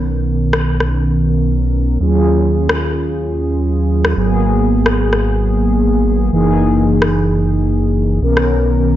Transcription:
Already playing: analog synth bass B1, analog polysynth D#3 B3 C#4 A#4
0.53 cross-stick
0.80 cross-stick
2.00 analog synth bass D#2, analog polysynth F#3 C#4 F4 G#4
2.69 cross-stick
4.05 cross-stick
4.16 analog synth bass G#1, analog polysynth F#3 A#3 B3 G#4
4.86 cross-stick
5.13 cross-stick
6.32 analog synth bass F#1, analog polysynth E3 A#3 D#4 G#4
7.02 cross-stick
8.21 analog synth bass B1, analog polysynth D#3 B3 C#4 A#4
8.37 cross-stick

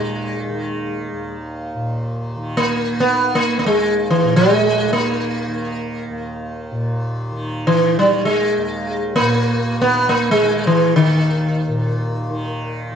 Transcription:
Already playing: tanpura D#2 A#2 D#3, sitar G#3
0.50 tanpura D#3
1.13 tanpura D#2
1.75 tanpura A#2
2.37 tanpura D#3
2.57 sitar A#3
2.99 tanpura D#3, sitar B3
3.35 sitar A#3
3.59 tanpura D#2, sitar A#3
3.66 sitar G#3
4.10 sitar E3
4.23 tanpura A#2
4.36 sitar G#3
4.86 tanpura D#3
4.93 sitar A#3
5.48 tanpura D#3
6.10 tanpura D#2
6.71 tanpura A#2
7.32 tanpura D#3
7.67 sitar E3
7.95 tanpura D#3
7.99 sitar G3
8.25 sitar G#3
8.57 tanpura D#2
9.16 tanpura A#2, sitar A#3
9.81 tanpura D#3, sitar B3
10.09 sitar A#3
10.31 sitar G#3
10.43 tanpura D#3
10.67 sitar E3
10.96 sitar D#3
11.06 tanpura D#2
11.68 tanpura A#2
12.30 tanpura D#3
12.92 tanpura D#3

